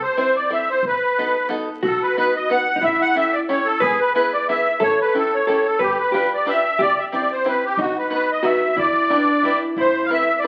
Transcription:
0.03 accordion C5
0.17 five-string banjo C4 E4 A4 C5, accordion C5
0.36 accordion D5
0.50 five-string banjo C4 E4 A4 C5, accordion E5
0.70 accordion C5
0.83 upright bass B1
0.87 accordion B4
1.18 five-string banjo B3 D#4 F#4 A4
1.49 five-string banjo B3 D#4 F#4 A4
1.83 upright bass B1, hollow-body jazz guitar F#4, accordion A4
2.03 accordion B4
2.17 five-string banjo B3 D#4 F#4 B4, accordion B4
2.36 accordion D#5
2.49 five-string banjo B3 D#4 F#4 B4, accordion F#5
2.76 hollow-body jazz guitar D#4
2.81 upright bass A1, hollow-body jazz guitar E4, accordion E5
3.01 accordion F#5
3.15 five-string banjo C#4 E4 G4 A4, accordion E5
3.33 accordion D5
3.49 five-string banjo C#4 E4 G4 A4, accordion C#5
3.65 accordion A4
3.80 upright bass E1, accordion G#4, hollow-body jazz guitar B4
3.99 accordion B4
4.14 five-string banjo B3 E4 G#4 B4, accordion B4
4.33 accordion D5
4.49 five-string banjo B3 E4 G#4 B4, accordion E5
4.80 upright bass A1, hollow-body jazz guitar A4, accordion C#5
5.01 accordion B4
5.14 five-string banjo C#4 E4 G4 A4, accordion A4
5.34 accordion C#5
5.47 five-string banjo C#4 E4 G4 A4, hollow-body jazz guitar A4, accordion C#5
5.66 accordion A4
5.79 upright bass G1, accordion G4, hollow-body jazz guitar B4
5.99 accordion B4
6.12 five-string banjo D4 F4 G4 B4, hollow-body jazz guitar G4, accordion B4
6.34 accordion D5
6.46 five-string banjo D4 F4 G4 B4, accordion E5
6.79 upright bass C2, hollow-body jazz guitar G4, accordion D5
6.99 accordion E5
7.12 five-string banjo C4 E4 G4 C5, accordion D5
7.32 accordion C5
7.45 five-string banjo C4 E4 G4 C5, accordion B4
7.66 accordion G4
7.77 upright bass B1, hollow-body jazz guitar D#4, accordion F#4
7.98 accordion B4
8.10 five-string banjo B3 D#4 F#4 B4, accordion B4
8.32 accordion D#5
8.43 five-string banjo B3 D#4 F#4 B4, hollow-body jazz guitar F#4, accordion E5
8.77 upright bass E2, hollow-body jazz guitar E4, accordion D5
9.10 hollow-body jazz guitar D4, five-string banjo D4 E4 G4 B4
9.43 five-string banjo D4 E4 G4 B4, hollow-body jazz guitar E4
9.76 upright bass A1, hollow-body jazz guitar E4, accordion C5
10.04 accordion F5
10.10 five-string banjo C4 E4 A4 B4, accordion E5
10.39 accordion D5
10.43 five-string banjo C4 E4

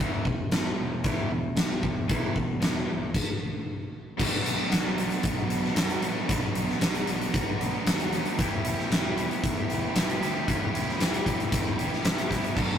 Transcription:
0.00 picked electric bass E1, distorted electric guitar E2 B2 E3 B3 E4
0.25 distorted electric guitar E2 B2 E3 B3, kick
0.50 picked electric bass E1, distorted electric guitar E2 B2 E3 B3, snare, closed hi-hat
0.78 picked electric bass E1, distorted electric guitar E2 B2 E3 B3
1.04 picked electric bass E1, distorted electric guitar E2 B2 E3 B3 E4, kick, closed hi-hat
1.31 picked electric bass E1, distorted electric guitar E2 B2 E3 B3
1.56 picked electric bass B1, distorted electric guitar E2 B2 E3 B3, snare, closed hi-hat
1.82 picked electric bass E1, distorted electric guitar E2 B2 E3 B3, kick
2.09 picked electric bass E1, distorted electric guitar E2 B2 E3 B3 E4, kick, closed hi-hat
2.34 picked electric bass E1, distorted electric guitar E2 B2 E3 B3, kick
2.60 picked electric bass E1, distorted electric guitar E2 B2 E3 B3, snare, closed hi-hat
2.86 picked electric bass A#1, distorted electric guitar E2 B2 E3 B3
3.14 kick, crash
4.17 picked electric bass B1, distorted electric guitar B2 F#3 B3 D4 F#4, kick, crash
4.44 distorted electric guitar B3 D4 F#4, closed hi-hat
4.69 picked electric bass B1, distorted electric guitar B2 F#3 B3 D4 F#4, snare, closed hi-hat
4.97 distorted electric guitar B3 D4 F#4, closed hi-hat
5.10 closed hi-hat
5.23 picked electric bass B1, kick, closed hi-hat
5.50 picked electric bass B1, distorted electric guitar B3 D4 F#4, closed hi-hat
5.64 snare
5.73 picked electric bass F#2, distorted electric guitar B2 F#3 B3 D4, snare, closed hi-hat
5.78 distorted electric guitar F#4
5.90 closed hi-hat
6.02 picked electric bass A2, distorted electric guitar B3 D4 F#4, closed hi-hat
6.28 picked electric bass B1, distorted electric guitar B2 F#3 B3 D4 F#4, kick, closed hi-hat
6.55 picked electric bass B1, distorted electric guitar B3 D4 F#4, closed hi-hat
6.69 snare
6.81 picked electric bass B1, distorted electric guitar B2 F#3 B3 D4 F#4, snare, closed hi-hat
6.95 closed hi-hat
7.06 picked electric bass B1, distorted electric guitar B3 D4 F#4, closed hi-hat
7.21 closed hi-hat
7.34 picked electric bass B1, kick, closed hi-hat
7.59 distorted electric guitar B3 D4 F#4, closed hi-hat
7.85 picked electric bass D#2, distorted electric guitar B2 F#3 B3 D4 F#4, snare, closed hi-hat
8.00 closed hi-hat
8.11 distorted electric guitar B3 D4 F#4, snare, closed hi-hat
8.25 closed hi-hat
8.37 picked electric bass E1, distorted electric guitar E3 B3 E4 G4, kick, closed hi-hat
8.63 distorted electric guitar B3 E4 G4, closed hi-hat
8.79 snare
8.90 picked electric bass E1, distorted electric guitar E3 B3 E4 G4, snare, closed hi-hat
9.17 distorted electric guitar B3 E4 G4, closed hi-hat
9.31 closed hi-hat
9.44 picked electric bass E1, kick, closed hi-hat
9.69 picked electric bass E1, distorted electric guitar B3 E4 G4, closed hi-hat
9.95 picked electric bass B1, distorted electric guitar E3 B3 E4 G4, snare, closed hi-hat
10.10 closed hi-hat
10.20 picked electric bass D2, distorted electric guitar B3 E4 G4, snare, closed hi-hat
10.47 picked electric bass E1, distorted electric guitar E3 B3 E4 G4, kick, closed hi-hat
10.73 picked electric bass E1, distorted electric guitar B3 E4 G4, closed hi-hat
10.89 snare
10.99 picked electric bass E1, distorted electric guitar E3 B3 E4 G4, snare, closed hi-hat
11.14 closed hi-hat
11.25 picked electric bass E1, distorted electric guitar B3 E4 G4, kick, closed hi-hat
11.40 closed hi-hat
11.52 picked electric bass E1, kick, closed hi-hat
11.78 distorted electric guitar B3 E4 G4, closed hi-hat
11.93 snare
12.04 picked electric bass C2, distorted electric guitar E3 B3 E4 G4, snare, closed hi-hat
12.19 closed hi-hat
12.29 distorted electric guitar B3 E4 G4, kick, snare, closed hi-hat
12.44 closed hi-hat
12.56 picked electric bass B1, distorted electric guitar B2 F#3 B3 D4 F#4, kick, crash

